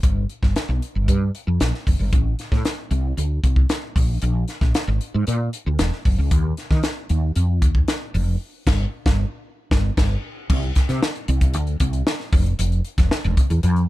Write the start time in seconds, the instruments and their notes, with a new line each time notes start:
0.03 fretless electric bass G1, kick, closed hi-hat
0.30 closed hi-hat
0.43 fretless electric bass G1, kick, snare
0.56 snare, closed hi-hat
0.69 fretless electric bass B1
0.82 closed hi-hat
0.95 fretless electric bass G1
1.08 fretless electric bass G2, kick, closed hi-hat
1.35 closed hi-hat
1.47 fretless electric bass F2
1.60 fretless electric bass A#1, snare, closed hi-hat
1.74 snare
1.87 fretless electric bass F1, kick, open hi-hat
1.99 fretless electric bass G1
2.13 fretless electric bass A1, kick, closed hi-hat
2.39 snare, closed hi-hat
2.52 fretless electric bass A2, kick, snare
2.65 snare, closed hi-hat
2.91 fretless electric bass C2, closed hi-hat
3.17 fretless electric bass D2, closed hi-hat
3.43 fretless electric bass C2, kick, closed hi-hat
3.56 kick
3.69 snare, closed hi-hat
3.96 fretless electric bass A#1, kick, open hi-hat
4.22 fretless electric bass A#1, closed hi-hat
4.48 snare, closed hi-hat
4.61 fretless electric bass A#1, kick, snare
4.74 snare, closed hi-hat
4.87 fretless electric bass G#1
5.01 closed hi-hat
5.14 fretless electric bass G#2
5.27 fretless electric bass A#2, closed hi-hat
5.53 closed hi-hat
5.66 fretless electric bass D2
5.79 fretless electric bass E1, snare, closed hi-hat
5.92 snare
6.05 fretless electric bass F#1, kick, open hi-hat
6.18 fretless electric bass C#2
6.31 fretless electric bass D#2, kick, closed hi-hat
6.57 snare, closed hi-hat
6.71 fretless electric bass D#3, kick, snare
6.83 snare, closed hi-hat
7.09 fretless electric bass D#2, closed hi-hat
7.36 fretless electric bass F2, closed hi-hat
7.62 fretless electric bass D#2, kick, closed hi-hat
7.75 kick
7.88 snare, closed hi-hat
8.14 fretless electric bass F1, open hi-hat
8.67 fretless electric bass G1, kick, snare, crash
9.06 fretless electric bass G1, kick, snare
9.71 fretless electric bass G1, kick, snare
9.97 fretless electric bass G1, kick, snare, crash
10.50 fretless electric bass C2, kick, crash
10.63 closed hi-hat
10.75 kick, snare, closed hi-hat
10.89 fretless electric bass C3, snare, closed hi-hat
11.03 snare
11.15 closed hi-hat
11.28 fretless electric bass C2, closed hi-hat
11.41 kick, closed hi-hat
11.54 fretless electric bass D2, closed hi-hat
11.67 closed hi-hat
11.80 fretless electric bass C2, kick, closed hi-hat
11.93 closed hi-hat
12.07 snare
12.20 snare
12.33 fretless electric bass F1, kick, open hi-hat
12.46 closed hi-hat
12.59 fretless electric bass F1, closed hi-hat
12.72 closed hi-hat
12.85 closed hi-hat
12.98 fretless electric bass F1, kick, snare, closed hi-hat
13.11 snare
13.24 fretless electric bass E1, closed hi-hat
13.37 kick, closed hi-hat
13.50 fretless electric bass E2, closed hi-hat
13.63 fretless electric bass F2, closed hi-hat
13.76 closed hi-hat